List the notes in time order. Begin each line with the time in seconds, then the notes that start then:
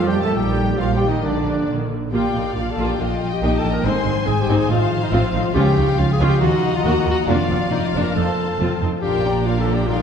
Already playing: F2 F3 C4 D#4 A4
0.07 G3 G4 G5
0.11 D#3 A3 G4
0.18 A#2 A3 A4 A5
0.22 A3 A#3 A4 A5
0.28 D#4
0.32 G3 A#3 G4 A#4 G5
0.36 A#1 G3 G4
0.58 D#3 G3
0.78 A#1 F3 G3 A#3 F4 F5
0.94 G3 G4 G5
1.03 A#2 D#3 G3
1.09 D#3 A#3 D#4 D#5
1.15 F4
1.20 D3 A#4 D5
1.24 A#1 D3 A#3 D4 D5
1.46 F3 D4
1.67 A#1 D#3
1.90 D3
2.12 A#1 A#2 A#3 F4 G4 D5 F5 G5
2.34 A#1 A#2 A#3 D#4
2.54 A#1 A#2 A#3 D4 F4 F5
2.71 A4 A5
2.76 A#1 A#2 F3 A#3 F4
2.86 G4 G5
2.98 A#1 A#2 A#3 D4 F4 D#5 F5 G5
3.21 G3
3.31 G4 G5
3.41 A#1 A#2 A#3 D#4 G4 G5
3.56 A4 A5
3.62 A#1 A#2 F3 A#3 D4
3.70 A#4 A#5
3.84 G#1 G#2 C4 D#4 C5 G#5 C6
4.06 G#1 G#2 G#3 C4 D4
4.25 G#1 G#2 C4 D#4 G#4 G#5
4.41 G4 G5
4.48 G#1 G#2 D#3 C4 D#4
4.57 G#4 G#5
4.69 A1 A2 C4 D#4 F4 F5
4.74 F5
4.90 F3
5.03 D#4 D#5
5.11 A1 A2 C4 F4 F5
5.33 A1 A2 A3 C4 D#4
5.54 C#2 C#3 C#4 F4 G4 F5 G5
5.76 C#2 F3 C#4 D#4
5.97 C#2 C#4 F4 F5
6.12 G#4 G#5
6.19 C#2 C#4 F4
6.26 G4 G5
6.40 D#2 D#3 A#3 F4 F#4 D#5 F#5 A#5
6.63 D#4
6.73 F4 F5
6.83 D#2 A#3 F#4 A#4 F#5
7.05 D#2 A#3 F4
7.11 F#4 F#5
7.26 F1 F2 F3 A#3 D4 F4 D5 F5
7.49 F1 F2 A#3 C4 D4
7.71 F1 F2 A#3 D4 D#4 A#4 D#5
7.86 F4 F5
7.93 F1 F2 A#3 D4
8.01 A#4 A#5
8.14 F1 F2 F3 C4 D#4 A4 C5 A5
8.38 C4
8.59 F1 F2 C4 F4
8.81 F1 F2 C4 D#4
9.01 A#1 A#2 D4 F4 G4 A#4 F5 G5
9.23 A#3 D4 D5 A#5
9.45 D4 F4 A#4 F5
9.61 A4 A5
9.65 F3 A#3 D4 D5 A#5
9.74 G4 G5
9.87 A#2 G3 D#4 F4 A#4 G5
9.91 F5